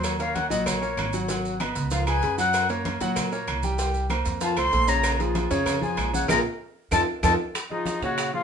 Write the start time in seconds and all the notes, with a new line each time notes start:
Already playing: D#2 F#3 F#4 F#5
0.04 C#5, cowbell, high conga, low agogo, claves, maracas
0.19 A#3 A#4 C#5 F5, cowbell, high conga, maracas
0.35 F#5, cowbell, high conga, low agogo, maracas
0.50 A#1 F#3 F#4 D#5 F#5, cowbell, high conga, maracas
0.66 C#5, cowbell, high conga, low conga, low agogo, claves, maracas
0.82 A#3 A#4 C#5, high conga, maracas
0.97 G#1, cowbell, high conga, low timbale, low agogo, claves, maracas
1.13 F#3 F#4 F#5, maracas
1.28 F#3 F#4 F#5, cowbell, high conga, low agogo, maracas
1.45 high conga, maracas
1.60 B3 B4 D#5, cowbell, high conga, low agogo, claves, maracas
1.75 C#2, cowbell, high conga, maracas
1.91 F3 F4 F5, cowbell, low agogo, maracas
2.07 G#3 G#4 B4 G#5, cowbell, high conga, low agogo, claves, maracas
2.22 F#2 G#3 G#4 B4, cowbell, high conga, maracas
2.38 F#3 F#4 F#5, high conga, low agogo, maracas
2.53 cowbell, high conga, low agogo, claves, maracas
2.69 A#3 A#4 C#5, cowbell, high conga, maracas
2.85 cowbell, high conga, low agogo, maracas
3.01 A#2 F#3 F#4 F#5, cowbell, high conga, maracas
3.16 cowbell, high conga, low conga, low agogo, claves, maracas
3.32 A#3 A#4 C#5, high conga, maracas
3.47 C2, cowbell, high conga, low agogo, claves, maracas
3.63 G3 G4 G5, high conga, maracas
3.78 G3 G4 G5, cowbell, high conga, low agogo, maracas
3.94 high conga, maracas
4.10 A#3 A#4 C5, cowbell, high conga, low agogo, claves, maracas
4.25 F2, cowbell, high conga, maracas
4.41 F3 F4 F5 A5, cowbell, high conga, low agogo, maracas
4.56 C2 A3 A4 C5 C6, cowbell, high conga, low agogo, claves, maracas
4.72 A#1 A3 A4 C5, cowbell, high conga, maracas
4.88 C#3 C#4 C#5 A#5, high conga, low agogo, maracas
5.03 cowbell, high conga, low agogo, claves, maracas
5.20 F3 F4 G#4, cowbell, high conga, maracas
5.35 cowbell, high conga, low agogo, maracas
5.50 F2 C#3 C#4 C#5, cowbell, high conga, maracas
5.66 cowbell, high conga, low conga, low agogo, claves, maracas
5.81 F3 F4 G#4 G#5, high conga, low conga, maracas
5.97 A#1, cowbell, high conga, low timbale, low agogo, claves, maracas
6.13 C#3 C#4 C#5 F#5, high conga, maracas
6.28 A#1 F4 G#4 A#4 A#5, cowbell, high conga, high timbale, claves, maracas
6.91 F2 D#4 F4 A4 A5, cowbell, high conga, high timbale, claves, maracas
7.23 F2 D#4 F4 A4 A5, cowbell, high conga, high timbale, claves, maracas
7.55 high bongo, high conga, high timbale, claves, maracas
7.70 F3 D#4 F4 G#4 D#5, high conga
7.86 high bongo, high conga, high timbale, low timbale, maracas
8.02 A#2 C#3 C#4 F#4 C#5 F#5, high timbale, maracas
8.18 high bongo, high conga, high timbale, claves, maracas
8.33 F3 F4 G#4 F5, high conga